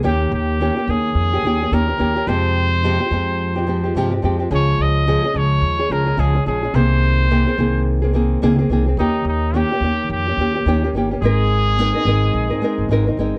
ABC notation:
X:1
M:4/4
L:1/16
Q:"Swing 16ths" 1/4=107
K:Ab
V:1 name="Trumpet"
G2 G4 A6 B4 | c12 z4 | d2 e4 d4 B2 A2 A2 | c8 z8 |
E2 E2 G4 G6 z2 | A12 z4 |]
V:2 name="Nylon-string guitar"
[E,B,DG]4 [E,B,DG] [B,DG] [E,B,D]3 [B,DG] [E,B,DG] [B,DG] [E,B,DG] [B,DG] [E,B,DG] [B,DG] | [F,,C,F,A,CG]4 [F,,C,F,A,CG] [F,A,CG] [F,A,CG]3 [F,A,CG] [F,A,CG] [F,A,CG] [F,,C,F,A,CG] [F,A,CG] [F,A,CG] [F,A,CG] | [D,F,A,DA]4 [D,F,A,DA] [A,DA] [F,A,DA]3 [A,DA] [F,A,DA] [A,DA] [D,F,A,DA] [A,DA] [F,A,DA] [A,DA] | [C,E,B,CA]4 [C,E,B,CA] [B,CA] [E,B,CA]3 [B,CA] [E,B,CA]2 [C,E,B,CA] [B,CA] [E,B,CA] [B,CA] |
[E,B,DG]4 [E,B,DG] [B,DG] [E,B,DG]3 [B,DG] [E,B,DG] [B,DG] [E,B,DG] [B,DG] [E,B,DG] [B,DG] | [A,CEB]4 [A,CEB] [CEB] [A,CEB]3 [CEB] [A,CEB]2 [A,CEB] [CEB] [A,CEB] z |]
V:3 name="Upright bass" clef=bass
E,,2 E,,3 z E,,2 F,,2 E,,2 E,,2 E,,2 | F,,4- F,, z F,,6 G,,2 F,,2 | D,,2 D,,3 z D,,2 E,,2 D,,2 D,,2 B,,,2 | C,,4- C,, z C,,6 D,,2 C,,2 |
E,,2 E,,3 z E,,2 F,,2 E,,2 E,,2 G,,,2 | A,,,4- A,,, z A,,,2 B,,, A,,, z G,,, A,,,2 G,,, z |]